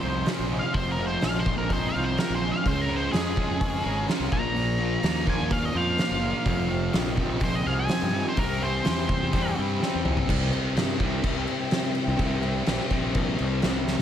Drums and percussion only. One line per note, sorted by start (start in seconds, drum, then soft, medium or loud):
0.26 snare medium
0.26 open hi-hat medium
0.74 kick medium
0.74 open hi-hat soft
1.21 snare loud
1.21 open hi-hat soft
1.46 kick medium
1.70 kick loud
1.70 open hi-hat medium
2.18 snare loud
2.18 open hi-hat medium
2.66 kick loud
2.66 open hi-hat soft
3.13 snare loud
3.13 open hi-hat medium
3.37 kick medium
3.61 kick loud
3.61 open hi-hat medium
4.08 snare loud
4.08 open hi-hat soft
4.32 kick loud
4.56 open hi-hat soft
5.03 snare loud
5.03 open hi-hat medium
5.27 kick medium
5.51 kick loud
5.51 open hi-hat medium
5.98 snare loud
5.98 open hi-hat soft
6.46 kick loud
6.46 open hi-hat soft
6.93 snare loud
6.93 open hi-hat medium
7.17 kick medium
7.40 kick loud
7.40 open hi-hat medium
7.88 snare loud
7.88 open hi-hat medium
8.37 kick medium
8.37 open hi-hat medium
8.85 snare loud
8.85 open hi-hat medium
9.09 kick loud
9.33 kick loud
9.33 open hi-hat medium
9.82 snare medium
10.05 mid tom medium
10.17 floor tom medium
10.29 kick loud
10.29 crash loud
10.29 crash medium
10.53 crash medium
10.77 snare loud
10.77 crash medium
11.00 kick medium
11.00 crash medium
11.24 kick loud
11.24 crash medium
11.48 crash medium
11.71 snare loud
11.71 crash medium
11.95 crash medium
12.19 kick loud
12.19 crash medium
12.43 crash medium
12.66 snare loud
12.66 crash medium
12.90 kick medium
12.90 crash medium
13.14 kick loud
13.14 crash medium
13.39 crash medium
13.62 snare loud
13.62 crash medium
13.87 snare medium